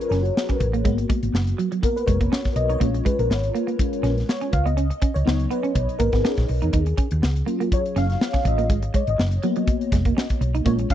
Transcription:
Already playing: fm electric piano F#3 C#4 F4 G#4 A#4 B4 C#5
0.01 closed hi-hat
0.09 fingered electric bass F#1, clean electric guitar C#4, fm electric piano A#4, snare, closed hi-hat
0.23 fm electric piano F#4, closed hi-hat
0.37 snare
0.49 clean electric guitar C#4, kick, closed hi-hat
0.60 fingered electric bass A1, muted clean electric guitar stroke, kick, closed hi-hat
0.73 clean electric guitar A#3, closed hi-hat
0.84 fingered electric bass G#1, clean electric guitar G#3, fm electric piano A#3 B3 F#4, kick, closed hi-hat
0.98 muted clean electric guitar stroke, closed hi-hat
1.09 clean electric guitar G#3, kick, closed hi-hat
1.23 fingered electric bass G#1, closed hi-hat
1.33 fingered electric bass F#1, muted clean electric guitar stroke, snare
1.47 closed hi-hat
1.58 clean electric guitar F#3, closed hi-hat
1.72 clean electric guitar F#3, closed hi-hat
1.82 fm electric piano A#3 B3 F#4 A#4, muted clean electric guitar stroke, kick, closed hi-hat
1.96 fm electric piano B4, closed hi-hat
2.07 fingered electric bass F1, clean electric guitar G#3, fm electric piano C#5, kick, closed hi-hat
2.21 clean electric guitar A#3, kick, closed hi-hat
2.32 clean electric guitar C#4, snare
2.44 kick, snare, closed hi-hat
2.56 fingered electric bass B1, fm electric piano D#5, muted clean electric guitar stroke, closed hi-hat
2.69 clean electric guitar D#4, fm electric piano C#5, closed hi-hat
2.80 fingered electric bass A#1, fm electric piano G#3 C#4 F4, clean electric guitar A#3, kick, closed hi-hat
2.94 muted clean electric guitar stroke, closed hi-hat
3.05 clean electric guitar G#3, fm electric piano B4, kick, closed hi-hat
3.19 fingered electric bass A#1, fm electric piano A#4, closed hi-hat
3.30 fingered electric bass G#1, muted clean electric guitar stroke, snare
3.44 closed hi-hat
3.55 clean electric guitar A#3, closed hi-hat
3.67 clean electric guitar A#3, closed hi-hat
3.78 fm electric piano G#3 C#4 F4, kick, closed hi-hat
3.93 closed hi-hat
4.03 fingered electric bass A#1, clean electric guitar C#4, snare, closed hi-hat
4.18 snare, closed hi-hat
4.29 fm electric piano C#5, snare
4.41 clean electric guitar C#4, closed hi-hat
4.53 fingered electric bass C#2, fm electric piano F5, muted clean electric guitar stroke, kick, closed hi-hat
4.65 clean electric guitar B3, fm electric piano D#5, closed hi-hat
4.77 clean electric guitar C#4, closed hi-hat
4.90 muted clean electric guitar stroke, closed hi-hat
5.02 clean electric guitar C#4, kick, closed hi-hat
5.14 fingered electric bass C#2, fm electric piano C#5, closed hi-hat
5.25 fingered electric bass C#2, fm electric piano F#3 B3 D#4, muted clean electric guitar stroke, snare
5.39 closed hi-hat
5.50 clean electric guitar B3, fm electric piano B4, closed hi-hat
5.63 clean electric guitar C#4, closed hi-hat
5.75 fingered electric bass B1, muted clean electric guitar stroke, kick, closed hi-hat
5.89 closed hi-hat
5.99 fingered electric bass G#1, clean electric guitar A#3, fm electric piano A#4, kick, closed hi-hat
6.12 fingered electric bass G#1, clean electric guitar B3, fm electric piano G#4, kick, snare, closed hi-hat
6.25 clean electric guitar C#4, snare
6.37 fingered electric bass A#1, kick, snare, closed hi-hat
6.48 fingered electric bass B1, muted clean electric guitar stroke, open hi-hat
6.62 fingered electric bass E2, clean electric guitar D#4, closed hi-hat
6.73 fingered electric bass D#2, clean electric guitar D#4, kick, closed hi-hat
6.86 muted clean electric guitar stroke, closed hi-hat
6.97 clean electric guitar C#4, kick, closed hi-hat
7.11 fingered electric bass D#2, closed hi-hat
7.22 fingered electric bass C#2, muted clean electric guitar stroke, snare
7.36 closed hi-hat
7.46 fm electric piano F#3 C#4 F4, clean electric guitar A#3, closed hi-hat
7.60 clean electric guitar A#3, closed hi-hat
7.72 fm electric piano C#5, kick, closed hi-hat
7.86 closed hi-hat
7.96 fingered electric bass F#1, clean electric guitar C#4, fm electric piano F5, snare, closed hi-hat
8.10 snare, closed hi-hat
8.21 snare
8.33 clean electric guitar C#4, kick, snare, closed hi-hat
8.45 fingered electric bass A1, fm electric piano D#5, muted clean electric guitar stroke, kick, closed hi-hat
8.58 clean electric guitar A#3, closed hi-hat
8.70 fingered electric bass G#1, clean electric guitar G#3, kick, closed hi-hat
8.83 muted clean electric guitar stroke, closed hi-hat
8.94 clean electric guitar G#3, fm electric piano C#5, kick, closed hi-hat
9.07 fingered electric bass G#1, fm electric piano D#5, closed hi-hat
9.18 fingered electric bass F#1, muted clean electric guitar stroke, snare
9.32 closed hi-hat
9.43 clean electric guitar F#3, fm electric piano A#3 B3 F#4, closed hi-hat
9.56 clean electric guitar F#3, closed hi-hat
9.67 muted clean electric guitar stroke, kick, closed hi-hat
9.81 closed hi-hat
9.92 fingered electric bass F1, clean electric guitar G#3, kick, snare, closed hi-hat
10.05 clean electric guitar A#3, kick, closed hi-hat
10.17 clean electric guitar C#4, snare
10.30 kick, closed hi-hat
10.41 fingered electric bass B1, muted clean electric guitar stroke, closed hi-hat
10.55 clean electric guitar D#4, closed hi-hat
10.64 fingered electric bass A#1, fm electric piano G#3 C#4 F4 C#5, clean electric guitar A#3, kick, closed hi-hat
10.79 muted clean electric guitar stroke, closed hi-hat
10.90 clean electric guitar C#4, fm electric piano F5, kick, closed hi-hat

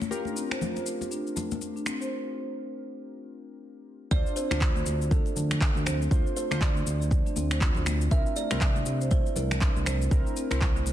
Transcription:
0.02 high conga, shaker
0.11 synth keys F4 G4 A#4, muted conga, shaker
0.25 marimba D4, high conga, shaker
0.36 marimba C4, shaker
0.51 marimba C5, finger snap, muted conga, shaker
0.61 marimba F4, high conga, low conga, shaker
0.76 marimba C5, muted conga, shaker
0.86 marimba A3, shaker
1.01 muted conga, high conga, shaker
1.11 marimba D4, shaker
1.27 shaker
1.36 marimba A3, muted conga, low conga, shaker
1.51 high conga, shaker
1.61 muted conga, shaker
1.76 marimba D4, shaker
1.86 marimba C4, finger snap, muted conga, shaker
2.01 marimba C5, shaker
4.11 analog synth bass D2, synth keys D4 F4 C5, kalimba D5, kick, muted conga, shaker
4.26 marimba D4, shaker
4.36 marimba C4, kalimba C5, shaker
4.51 analog synth bass D2, synth keys D4 F4 C5, marimba C5, finger snap, muted conga, high conga, shaker
4.60 marimba F4, kick, clap, low conga, shaker
4.76 marimba C5, high conga, shaker
4.86 analog synth bass D2, marimba A3, muted conga, shaker
5.02 shaker
5.11 marimba D4, kalimba A4, kick, high conga, shaker
5.26 muted conga, shaker
5.36 analog synth bass D2, marimba A3, low conga, shaker
5.51 finger snap, low conga, shaker
5.61 kick, clap, muted conga, shaker
5.75 analog synth bass D2, marimba D4, high conga, shaker
5.86 marimba C4, kalimba C5, finger snap, low conga, shaker
6.01 marimba C5, shaker
6.11 analog synth bass D2, synth keys D4 F4 C5, marimba F4, kick, muted conga, shaker
6.26 marimba C5, shaker
6.36 marimba A3, kalimba C5, shaker
6.51 analog synth bass D2, synth keys D4 F4 C5, finger snap, muted conga, high conga, shaker
6.61 kalimba D5, kick, clap, low conga, shaker
6.75 high conga, shaker
6.86 analog synth bass D2, marimba A3, muted conga, shaker
7.02 shaker
7.11 kick, low conga, shaker
7.26 marimba D4, muted conga, shaker
7.36 analog synth bass D2, marimba C4, high conga, shaker
7.51 marimba C5, finger snap, shaker
7.61 kick, clap, muted conga, shaker
7.75 analog synth bass D2, marimba C5, low conga, shaker
7.86 marimba A3, finger snap, high conga, shaker
8.01 shaker
8.11 analog synth bass C2, synth keys C4 E4 A#4, marimba D4, kalimba E5, kick, muted conga, shaker
8.26 shaker
8.36 marimba A3, kalimba D5, shaker
8.51 analog synth bass C2, synth keys C4 E4 A#4, finger snap, muted conga, high conga, shaker
8.61 kick, clap, low conga, shaker
8.76 marimba D4, high conga, shaker
8.86 analog synth bass C2, marimba C4, muted conga, shaker
9.01 marimba C5, shaker
9.11 kalimba C5, kick, high conga, shaker
9.26 marimba C5, muted conga, shaker
9.36 analog synth bass C2, marimba A3, kalimba A#4, low conga, shaker
9.51 finger snap, low conga, shaker
9.61 kick, clap, muted conga, shaker
9.76 analog synth bass C2, high conga, shaker
9.86 marimba A3, kalimba C5, finger snap, low conga, shaker
10.02 shaker
10.11 analog synth bass C2, synth keys C4 E4 A#4, kick, muted conga, shaker
10.26 marimba D4, shaker
10.36 marimba C4, shaker
10.51 analog synth bass C2, synth keys C4 E4 A#4, marimba C5, finger snap, muted conga, high conga, shaker
10.61 marimba E4, kick, clap, low conga, shaker
10.76 marimba C5, high conga, shaker
10.86 analog synth bass C2, marimba A3, muted conga, shaker

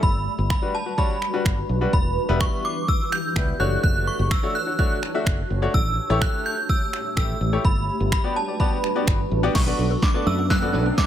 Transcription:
Already playing: ambient pad G3
0.03 fingered electric bass G1, ambient pad D4 F#4 B4, synth bell B5, kick
0.38 fingered electric bass G1
0.50 synth bell B5, finger snap, kick
0.62 grand piano G3 D4 F#4 B4
0.75 synth bell A5
0.86 grand piano F#4 B4
0.98 grand piano G3 D4 F#4 C#5, synth bell B5, kick
1.22 finger snap
1.33 grand piano G3 D4 F#4 B4
1.45 fingered electric bass G1, finger snap, kick
1.69 fingered electric bass B1
1.81 grand piano G3 D4 F#4 B4
1.93 fingered electric bass E1, ambient pad E3 E4 G4, synth bell B5, kick
2.29 fingered electric bass E1, grand piano G3 B3 E4 B4
2.40 synth bell C#6, finger snap, kick
2.65 synth bell D6
2.88 synth bell E6, kick
3.12 synth bell G6, finger snap
3.36 fingered electric bass C#2, grand piano G3 B3 E4 B4, finger snap, kick
3.60 fingered electric bass F#1, grand piano A3 D4 F#4 C#5, ambient pad D4 F#4 C#5, synth bell F#6
3.83 fingered electric bass F#1, synth bell F#6, kick
4.07 synth bell C#6
4.19 fingered electric bass F#1
4.31 synth bell E6, finger snap, kick
4.43 grand piano A3 D4 F#4 C#5
4.55 synth bell F#6
4.67 grand piano F#4 C#5
4.79 grand piano A3 D4 F#4 C#5, synth bell F#6, kick
5.03 finger snap
5.14 grand piano A3 D4 F#4 E5
5.26 fingered electric bass F#1, finger snap, kick
5.50 fingered electric bass F#1
5.62 grand piano A3 D4 F#4 C#5
5.74 fingered electric bass A1, ambient pad A3 G4, synth bell E6, kick
6.10 fingered electric bass A1, grand piano A3 E4 G4 C#5
6.21 synth bell F#6, finger snap, kick
6.46 synth bell G6
6.69 synth bell E6, kick
6.93 finger snap
7.17 fingered electric bass A1, grand piano A3 E4 G4 E5, synth bell E6, finger snap, kick
7.41 fingered electric bass A1
7.53 grand piano A3 E4 G4 C#5
7.65 fingered electric bass G1, ambient pad G3 D4 F#4 B4, synth bell B5, kick
8.00 fingered electric bass G1
8.12 synth bell B5, finger snap, kick
8.24 grand piano B3 F#4 G4 D5
8.36 synth bell A5
8.48 grand piano G4 D5
8.60 grand piano B3 F#4 G4 D5, synth bell B5, kick
8.84 finger snap
8.95 grand piano B3 F#4 G4 D5
9.07 fingered electric bass G1, finger snap, kick
9.31 fingered electric bass A1
9.43 grand piano B3 F#4 G4 D5
9.55 fingered electric bass B1, synth arpeggio sound A3, ambient pad A3 B3 D4, synth bell C#6, muted clean electric guitar stroke, kick, snare, crash, riser
9.66 grand piano B3 F#4 A4 D5, synth arpeggio sound B3, clean electric guitar D4 A4 B4
9.78 fingered electric bass B1, clean electric guitar D4 A4 B4, synth arpeggio sound D4
9.90 synth arpeggio sound A4, muted clean electric guitar stroke
10.02 synth arpeggio sound D4, synth bell D6, kick, snare
10.14 grand piano B3 F#4 A4 D5, synth arpeggio sound B3, clean electric guitar D4 A4 B4
10.26 fingered electric bass F#2, synth arpeggio sound A3, clean electric guitar D4 A4 B4, synth bell E6
10.38 synth arpeggio sound B3, muted clean electric guitar stroke
10.50 synth arpeggio sound D4, synth bell F#6, kick, snare
10.62 grand piano B3 F#4 A4 D5, synth arpeggio sound A4, muted clean electric guitar stroke
10.73 fingered electric bass B1, clean electric guitar D4 A4 B4, synth arpeggio sound D4
10.85 synth arpeggio sound B3, muted clean electric guitar stroke
10.98 synth arpeggio sound A3, synth bell D6, kick, snare

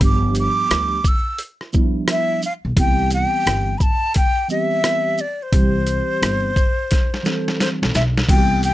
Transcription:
0.00 upright bass G1, tine electric piano F3 G3 B3 D4 G4, kick, closed hi-hat
0.04 flute D6
0.35 closed hi-hat, shaker
0.40 flute D6
0.71 upright bass D2, cross-stick, closed hi-hat
1.04 flute E6, kick, shaker
1.38 closed hi-hat
1.61 cross-stick
1.72 tine electric piano F3 G3 B3 D4 E4, kick, shaker
2.08 flute E5, cross-stick, closed hi-hat
2.42 flute F5, shaker
2.65 upright bass B1
2.76 upright bass C2, tine electric piano E3 G3 B3 C4 G4, flute G5, kick, closed hi-hat
3.11 flute G5, closed hi-hat, shaker
3.46 upright bass G1, cross-stick, closed hi-hat
3.78 flute B5, kick, shaker
3.82 flute A5
4.14 flute G5, kick, closed hi-hat
4.48 tine electric piano E3 G3 B3 C4 G4, flute E5, shaker
4.84 cross-stick, closed hi-hat
5.18 flute D5, shaker
5.42 flute C5
5.52 upright bass C2, tine electric piano E3 G3 C4 G4, kick, closed hi-hat
5.87 closed hi-hat, shaker
6.22 upright bass G1, cross-stick, closed hi-hat
6.56 kick, shaker
6.91 kick, snare, closed hi-hat
7.14 snare
7.23 tine electric piano E3 G3 C4 A4, snare, shaker
7.48 snare
7.60 flute C5, snare, closed hi-hat
7.82 upright bass B1, snare
7.94 upright bass B1, flute E5, snare, shaker
8.18 snare
8.27 upright bass C2, tine electric piano E3 G3 B3 C4 F#4, flute G5, kick, closed hi-hat, crash
8.36 tine electric piano G4
8.63 flute G5, closed hi-hat, shaker

